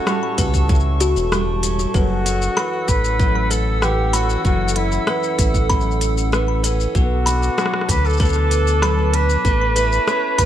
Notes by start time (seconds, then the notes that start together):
Already playing: A2 C#4 F#4 A4 A5 C#6
0.07 G3, cross-stick, shaker
0.38 C#2 A4 B4, kick, closed hi-hat, shaker
0.54 kick, shaker
0.69 A2, kick, shaker
0.75 shaker
0.80 shaker
1.00 F#4, closed hi-hat, shaker
1.16 E1, shaker
1.32 G3, cross-stick, shaker
1.63 C#4, closed hi-hat, shaker
1.79 shaker
1.94 F#1 F#2 F#4 A4 B4 F#5 E6, kick, shaker
2.26 C#4, closed hi-hat, shaker
2.42 shaker
2.57 E3 B5, cross-stick, shaker
2.88 A1 B4, kick, closed hi-hat, shaker
3.04 shaker
3.19 F#2, kick, shaker
3.35 cross-stick
3.50 A4 B4, closed hi-hat, shaker
3.82 E3 G4, cross-stick, shaker
4.13 C#4 F#4 B5, closed hi-hat, shaker
4.30 shaker
4.45 F#1 F#2 F#4, kick, shaker
4.69 shaker
4.76 C#4 E4, closed hi-hat
4.92 shaker
5.07 E3 B4, cross-stick
5.23 shaker
5.38 A1 F#4, kick, closed hi-hat, shaker
5.54 kick, shaker
5.70 F#2 B5, kick, shaker
5.81 shaker
5.91 shaker
6.01 closed hi-hat, shaker
6.17 shaker
6.32 E3, cross-stick, shaker
6.64 C#4 B4, closed hi-hat, shaker
6.80 shaker
6.95 B1 B2 F#4 B4 A5 D6, kick, shaker
7.26 D4 B5, closed hi-hat, shaker
7.43 shaker
7.58 F#3, cross-stick, shaker
7.66 cross-stick
7.74 cross-stick
7.81 cross-stick
7.89 D2 A4 B4, kick, closed hi-hat, shaker
8.05 A4, shaker
8.09 shaker
8.13 shaker
8.17 B2 A4 B4, kick, shaker
8.21 shaker
8.25 shaker
8.29 shaker
8.33 cross-stick, shaker
8.51 closed hi-hat, shaker
8.67 shaker
8.82 F#3 B5, cross-stick, shaker
9.14 D4 B4, closed hi-hat
9.30 shaker
9.44 A1 A3 C#6, kick, shaker
9.76 E4 B4, closed hi-hat, shaker
9.92 shaker
10.07 C#4, cross-stick, shaker
10.38 C#2 B4 B5, kick, closed hi-hat, shaker